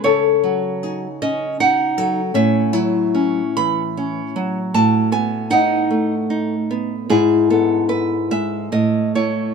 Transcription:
0.04 C#3 A4 C#5
0.44 F#3
0.83 D#4 G#4
1.22 C#4 D#5
1.60 D#4 F#4 F#5
1.98 F#3 A4
2.34 A2 C#4 E5
2.73 F#3 E4
3.15 C#4
3.57 E3 B5
3.97 C#4
4.36 F#3
4.74 A2 F#4 A5
5.12 B3 G#5
5.50 D#4 F#5
5.91 A3
6.30 D#4
6.71 B3
7.09 G#2 E4 G#4
7.50 B3 A4
7.89 E4 B4
8.31 G#3 E5
8.72 A2 D#5
9.15 A3 E4 C#5

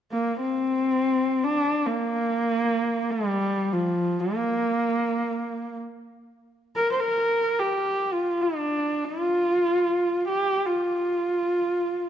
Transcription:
0.12 A#3
0.41 C4
1.44 D4
1.86 A#3
3.11 G3
3.73 F3
4.20 A#3
6.76 A#4
6.92 C5
7.00 A#4
7.59 G4
8.13 F4
8.41 D4
9.05 F4
10.29 G4
10.66 F4

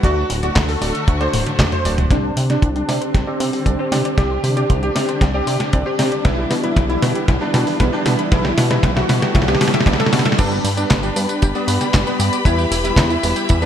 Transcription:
0.03 D2 D3 F#3 A3 D4 F#4 D5, kick, closed hi-hat
0.30 D1, open hi-hat
0.43 A3 D4 F#4 D5, closed hi-hat
0.56 D2, kick, snare, clap, closed hi-hat
0.69 A4, open hi-hat
0.81 D1 A3 D4 F#4 D5, open hi-hat
0.95 closed hi-hat
1.08 D2, kick, closed hi-hat
1.21 A3 D4 F#4 C5 D5, closed hi-hat
1.33 D1, open hi-hat, high tom
1.46 snare, closed hi-hat
1.59 D2 A3 D4 F#4 D5, kick, snare, clap, closed hi-hat, mid tom
1.72 C5, closed hi-hat, mid tom
1.85 D1 A3 D4 F#4 D5, open hi-hat
1.98 closed hi-hat, mid tom
2.11 C2 D3 G3 C4 D4 G4 D5, kick, snare, closed hi-hat, riser
2.24 C5
2.37 C3 G4, open hi-hat
2.50 C4 D4 G4 D5, snare, closed hi-hat
2.62 C2 C5, kick, closed hi-hat
2.76 D4 G4, closed hi-hat
2.88 C3 C4 D4 G4 D5, snare, open hi-hat
3.01 C5, closed hi-hat
3.14 C2 G4, kick, snare, closed hi-hat
3.27 C4 D4 G4 D5
3.40 C3 C5, open hi-hat
3.53 G4, open hi-hat
3.66 C2 C4 D4 G4 D5, kick, closed hi-hat
3.79 C4 C5
3.92 C3 C4 D4 G4 D5, snare, open hi-hat
4.05 D5, closed hi-hat
4.18 C2 C4 D4 G4 D5, kick, snare, closed hi-hat
4.31 C5
4.44 C3 G4, open hi-hat
4.57 C4 D4 G4 D5, closed hi-hat
4.70 C2 C5, kick, closed hi-hat
4.83 G4, closed hi-hat
4.95 C3 C4 D4 G4 D5, snare, open hi-hat
5.09 C5, closed hi-hat
5.21 C2 G4, kick, snare, closed hi-hat
5.34 C4 D4 G4 D5
5.47 C3 C5, open hi-hat
5.60 G4, snare, closed hi-hat
5.73 C2 C4 D4 G4 D5, kick, closed hi-hat
5.86 G4 C5
5.99 C3 C4 D4 G4 D5, snare, open hi-hat
6.12 D5, closed hi-hat
6.25 B1 E3 G3 B3 E4 B4, kick, snare, closed hi-hat
6.38 G4
6.51 B2 E4, snare, open hi-hat
6.64 G3 B3 E4 B4, closed hi-hat
6.76 B1 G4, kick, snare, closed hi-hat
6.89 E4, closed hi-hat
7.02 B2 G3 B3 E4 B4, snare, open hi-hat
7.15 G4, closed hi-hat
7.28 B1 E4, kick, snare, closed hi-hat
7.41 G3 B3 D4 E4 B4
7.54 B2 G4, snare, open hi-hat
7.67 E4, open hi-hat
7.80 B1 G3 B3 E4 B4, kick, snare, closed hi-hat
7.93 D4 G4
8.06 B2 G3 B3 E4 B4, snare, open hi-hat
8.19 B4, closed hi-hat
8.32 B1 G3 A3 B3 E4 B4, kick, snare, closed hi-hat
8.45 G4, snare
8.57 B2 E4, snare, open hi-hat
8.70 G3 B3 E4 B4, snare
8.83 B1 G4, kick, snare, closed hi-hat
8.96 E4 F#4, snare, closed hi-hat
9.09 B2 G3 B3 E4 B4, snare, open hi-hat
9.22 G4, snare, closed hi-hat
9.35 B1 E4, kick, snare, closed hi-hat
9.42 snare
9.48 G3 B3 E4 G4 B4, snare, closed hi-hat
9.55 snare
9.61 B2 G4, snare, open hi-hat
9.68 snare
9.74 E5, snare, closed hi-hat
9.80 snare
9.86 B1 G3 B3 E4 D5 B5, kick, snare, closed hi-hat
9.93 snare
10.00 A4 E5, snare, closed hi-hat
10.06 snare
10.13 B2 E5, snare, open hi-hat
10.19 snare
10.26 E5, snare, closed hi-hat
10.32 snare
10.38 G1 G3 B3 D4 G4 B4 D5 B5, kick, closed hi-hat, crash, tambourine
10.51 B4, tambourine
10.64 G2 G4, open hi-hat, tambourine
10.77 G3 B3 D4 B4 D5, closed hi-hat, tambourine
10.90 G1 B4, kick, snare, clap, closed hi-hat, tambourine
11.03 D4 G4, closed hi-hat, tambourine
11.16 G2 G3 B3 D4 B4 D5, open hi-hat, tambourine
11.29 B4, closed hi-hat, tambourine
11.42 G1 G4, kick, closed hi-hat, tambourine
11.55 G3 B3 D4 B4 D5, tambourine
11.68 G2 B4, open hi-hat, tambourine
11.81 G4, snare, closed hi-hat, tambourine
11.94 G1 G3 B3 D4 D5, kick, snare, clap, closed hi-hat, tambourine
12.07 B3 B4, tambourine
12.20 G2 G4, open hi-hat, tambourine
12.33 D5, closed hi-hat, tambourine
12.45 E2 G3 B3 E4 B4 E5, kick, closed hi-hat, tambourine
12.58 G4, tambourine
12.71 E1 E4, open hi-hat, tambourine
12.84 G3 B3 E4 B4, closed hi-hat, tambourine
12.96 E2 G4, kick, snare, clap, closed hi-hat, tambourine
13.10 E4, closed hi-hat, tambourine
13.23 E1 G3 B3 E4 B4, open hi-hat, tambourine
13.36 G4, closed hi-hat, tambourine
13.49 E2 E4, kick, closed hi-hat, tambourine
13.62 G3 B3 D4 E4 B4, tambourine

